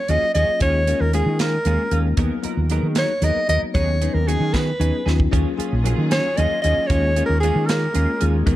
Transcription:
Already playing: C#5
0.08 D#2 F#3 A#3 C#4 F4 G#4 D#5, closed hi-hat
0.22 muted fretless electric bass stroke
0.34 D#2 F#3 A#3 C#4 F4 G#4 D#5, closed hi-hat
0.60 D#2 G#3 A#3 C#4 F4 G#4 C#5, kick, closed hi-hat
0.86 G#3 A#3 C#4 F4 G#4 A#4, closed hi-hat
1.00 D#2 A#4
1.13 G#3 A#3 C#4 F4 G#4 A#4, closed hi-hat
1.26 D#3
1.39 G#3 C#4 F4 G#4 A#4, snare, closed hi-hat
1.65 D#2 G#3 A#3 C#4 F4 G#4, closed hi-hat
1.91 D#2 G#3 A#3 C#4 F4 G#4 A#4, closed hi-hat
2.17 D#2 F#3 A#3 B3 D#4 G#4 A#4, kick, closed hi-hat
2.42 F#3 A#3 B3 D#4 F4 A#4, muted fretless electric bass stroke, closed hi-hat
2.57 D#2
2.70 F#3 A#3 B3 D#4 G#4 A#4, closed hi-hat
2.83 D#3
2.95 F#3 B3 D#4 A#4 C#5, snare, closed hi-hat
3.21 D#2 F#3 A#3 B3 D#4 G#4 A#4 D#5, closed hi-hat
3.48 D#2 F#3 A#3 B3 D#4 F#4 A#4 D#5, closed hi-hat
3.74 D#2 F#3 B3 C#4 D#4 G#4 C#5, kick, closed hi-hat
4.01 F#3 B3 C#4 D#4 G#4 B4, closed hi-hat
4.14 D#2 A#4
4.27 F#3 B3 C#4 D#4 G#4, closed hi-hat
4.40 D#3
4.54 F#3 B3 D#4 G#4 B4, kick, snare, closed hi-hat
4.79 D#2 F#3 B3 C#4 D#4 G#4, closed hi-hat
5.06 D#2 F#3 B3 C#4 D#4 F4 G#4, snare
5.20 kick
5.31 D#2 D#3 F#3 A#3 C#4 F4 G#4, kick, closed hi-hat
5.57 F#3 A#3 C#4 F4 G#4, muted fretless electric bass stroke, closed hi-hat
5.73 A#1
5.84 F#3 A#3 C#4 F4 G#4 A#4, closed hi-hat
5.98 D#3
6.11 F#3 C#4 F4 G#4 C#5, snare, closed hi-hat
6.36 D#2 F#3 A#3 C#4 F4 G#4 A#4 D#5, closed hi-hat
6.50 muted fretless electric bass stroke
6.62 D#2 F#3 A#3 C#4 F4 G#4 D#5, closed hi-hat
6.87 D#2 G#3 A#3 C#4 F4 G#4 C#5, kick, closed hi-hat
6.91 G#3 G#4
7.16 G#3 A#3 C#4 F4 G#4 A#4, closed hi-hat
7.26 D#2 A#4
7.40 G#3 A#3 C#4 F4 G#4, closed hi-hat
7.44 F4 G#4
7.55 D#3
7.67 G#3 C#4 F4 G#4 A#4, snare, closed hi-hat
7.93 D#2 G#3 A#3 C#4 F4 G#4 A#4, closed hi-hat
8.20 D#2 G#3 A#3 C#4 F4 G#4, closed hi-hat
8.46 D#2 F#3 G#3 B3 D#4 F#4 A#4, kick, closed hi-hat

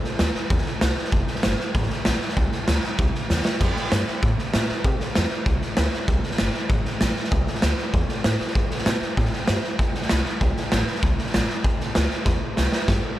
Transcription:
0.04 muted upright bass stroke, snare
0.19 D#2, snare, hi-hat pedal
0.35 muted upright bass stroke, snare
0.50 E2, kick, snare
0.58 snare
0.66 muted upright bass stroke, snare
0.81 C2, snare, hi-hat pedal
0.98 muted upright bass stroke, snare
1.05 snare
1.12 F1, kick, snare
1.27 muted upright bass stroke, snare
1.35 snare
1.43 G1, snare, hi-hat pedal
1.60 muted upright bass stroke, snare
1.75 A1, kick, snare
1.82 snare
1.90 muted upright bass stroke, snare
2.05 A#1, snare, hi-hat pedal
2.21 muted upright bass stroke, snare
2.29 snare
2.37 C2, kick, snare
2.52 muted upright bass stroke, snare
2.68 D2, snare, hi-hat pedal
2.83 muted upright bass stroke, snare
2.99 C2, kick, snare
3.15 muted upright bass stroke, snare
3.30 E2, snare, hi-hat pedal
3.45 muted upright bass stroke, snare
3.61 F2, kick, snare, crash
3.76 muted upright bass stroke, snare
3.84 snare
3.92 G2, snare, hi-hat pedal
4.08 muted upright bass stroke, snare
4.23 A2, kick, snare
4.39 muted upright bass stroke, snare
4.54 A#2, snare, hi-hat pedal
4.69 muted upright bass stroke, snare
4.84 C3, kick, snare
5.00 muted upright bass stroke, snare
5.15 F2, snare, hi-hat pedal
5.30 muted upright bass stroke, snare
5.46 C2, kick, snare
5.62 muted upright bass stroke, snare
5.77 D2, snare, hi-hat pedal
5.93 muted upright bass stroke, snare
6.08 C2, kick, snare
6.23 muted upright bass stroke, snare
6.31 snare
6.38 G1, snare, hi-hat pedal
6.54 muted upright bass stroke, snare
6.69 A1, kick, snare
6.85 muted upright bass stroke, snare
7.01 A#1, snare, hi-hat pedal
7.17 muted upright bass stroke, snare
7.24 snare
7.32 C2, kick, snare
7.47 muted upright bass stroke, snare
7.55 snare
7.62 D2, snare, hi-hat pedal
7.78 muted upright bass stroke, snare
7.94 E2, kick, snare
8.09 muted upright bass stroke, snare
8.24 A2, snare, hi-hat pedal
8.40 muted upright bass stroke, snare
8.48 snare
8.55 G2, kick, snare
8.71 muted upright bass stroke, snare
8.78 snare
8.86 B2, snare, hi-hat pedal
9.02 muted upright bass stroke, snare
9.17 A2, kick, snare
9.25 snare
9.33 muted upright bass stroke, snare
9.48 G2, snare, hi-hat pedal
9.64 muted upright bass stroke, snare
9.79 F2, kick, snare
9.95 snare
10.02 snare
10.09 C2, snare, hi-hat pedal
10.25 muted upright bass stroke, snare
10.41 C2, kick, snare
10.57 muted upright bass stroke, snare
10.72 A1, snare, hi-hat pedal
10.87 muted upright bass stroke, snare
10.95 snare
11.03 C2, kick, snare
11.19 muted upright bass stroke, snare
11.27 snare
11.34 A#1, snare, hi-hat pedal
11.50 muted upright bass stroke, snare
11.64 C2, kick, snare
11.81 muted upright bass stroke, snare
11.95 D2, snare, hi-hat pedal
12.11 muted upright bass stroke, snare
12.25 E2, kick, snare
12.42 muted upright bass stroke
12.57 C2, snare, hi-hat pedal
12.73 muted upright bass stroke, snare
12.88 G2, kick, snare
13.04 muted upright bass stroke

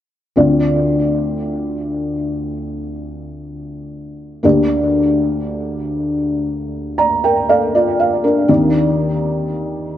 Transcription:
0.36 D2 D3 C4 F4 D5
4.43 D2 D3 A#3 G4 D5
6.98 D5 A#5
7.24 A#4 G5
7.49 A4 D5 F5
7.75 F4 D5
8.00 F5
8.24 D4 A#4
8.48 D#2 D#3 C4 D#4 D5

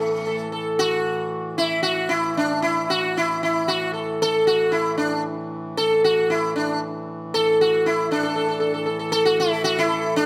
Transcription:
Already playing: A2 E3 A3
0.27 A4
0.52 A4
0.79 F#4
1.58 E4
1.83 F#4
2.09 E4
2.37 D4
2.62 E4
2.90 F#4
3.17 E4
3.43 E4
3.68 F#4
3.93 A4
4.22 A4
4.47 F#4
4.72 E4
4.98 D4
5.77 A4
6.04 F#4
6.30 E4
6.56 D4
7.34 A4
7.61 F#4
7.86 E4
8.09 A2 E3 D4 A4
8.23 A4
8.36 A4
8.49 A4
8.60 A4
8.74 A4
8.86 A4
8.99 A4
9.12 A4
9.25 F#4
9.40 E4
9.52 A4
9.64 F#4
9.79 E4
9.88 A4
10.16 D4

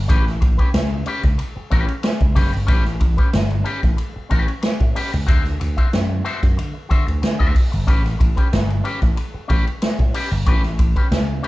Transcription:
0.08 A1 C#4 G4 B4, kick, hi-hat pedal, ride
0.27 snare
0.41 A1, muted clean electric guitar stroke, kick, ride
0.58 C#4 G4 B4, kick, ride
0.74 C#2, snare, ride
0.91 muted clean electric guitar stroke
1.06 C#4 G4 B4, ride
1.23 C#2, muted clean electric guitar stroke, kick, snare, ride
1.38 muted clean electric guitar stroke, ride
1.56 muted clean electric guitar stroke, muted slap bass stroke
1.70 A1 C#4 G4 B4, kick, ride
1.87 muted clean electric guitar stroke, ride
2.03 muted clean electric guitar stroke, snare, ride
2.19 C#2, muted clean electric guitar stroke, kick, ride
2.35 F#1 C#4 G4 B4, kick, open hi-hat, ride
2.53 G1, muted clean electric guitar stroke, ride
2.67 A1 C#4 G4 B4, kick, hi-hat pedal, ride
2.85 snare
3.00 A1, muted clean electric guitar stroke, kick, ride
3.17 C#4 G4 B4, kick, ride
3.33 G1, snare, ride
3.50 muted clean electric guitar stroke, ride
3.64 C#4 G4 B4, ride
3.82 A1, muted clean electric guitar stroke, kick, snare, ride
3.97 muted clean electric guitar stroke, ride
4.14 muted clean electric guitar stroke, muted slap bass stroke
4.29 A1 C#4 G4 B4, kick, ride
4.47 muted clean electric guitar stroke, ride
4.62 muted clean electric guitar stroke, snare, ride
4.79 A2, muted clean electric guitar stroke, kick, ride
4.95 C#4 G4 B4, open hi-hat, ride
5.13 C#2, muted clean electric guitar stroke, ride
5.27 D2 F#4 C5 E5, kick, hi-hat pedal, ride
5.45 snare, ride
5.60 D2, muted clean electric guitar stroke, ride
5.77 F#4 C5 E5, kick, ride
5.93 F#2, snare, ride
6.09 muted clean electric guitar stroke
6.24 F#4 C5 E5, ride
6.41 F#2, muted clean electric guitar stroke, kick, snare, ride
6.57 D3, muted clean electric guitar stroke, ride
6.74 muted clean electric guitar stroke
6.89 D3 F#4 C5 E5, kick, ride
7.07 D2, muted clean electric guitar stroke, ride
7.22 D3, muted clean electric guitar stroke, snare, ride
7.39 D2 F#4 C5 E5, kick
7.54 muted clean electric guitar stroke, kick, open hi-hat, ride
7.71 G1, muted clean electric guitar stroke, ride
7.87 A1 C#4 G4 B4, kick, hi-hat pedal, ride
8.05 snare, ride
8.19 A1, muted clean electric guitar stroke, kick, ride
8.36 C#4 G4 B4, kick, ride
8.53 G1, snare, ride
8.69 muted clean electric guitar stroke, ride
8.84 C#4 G4 B4, ride
9.01 A1, muted clean electric guitar stroke, kick, snare, ride
9.16 muted clean electric guitar stroke, ride
9.34 muted clean electric guitar stroke, muted slap bass stroke
9.48 A1 C#4 G4 B4, kick, ride
9.67 muted clean electric guitar stroke, ride
9.82 muted clean electric guitar stroke, snare, ride
9.98 A2, muted clean electric guitar stroke, kick, ride
10.14 C#4 G4 B4, open hi-hat, ride
10.31 G1, muted clean electric guitar stroke, ride
10.46 A1 C#4 G4 B4, kick, hi-hat pedal, ride
10.64 snare, ride
10.79 A1, muted clean electric guitar stroke, kick, ride
10.96 C#4 G4 B4, kick, ride
11.11 C#2, snare, ride
11.28 muted clean electric guitar stroke
11.43 C#4 G4 B4, ride

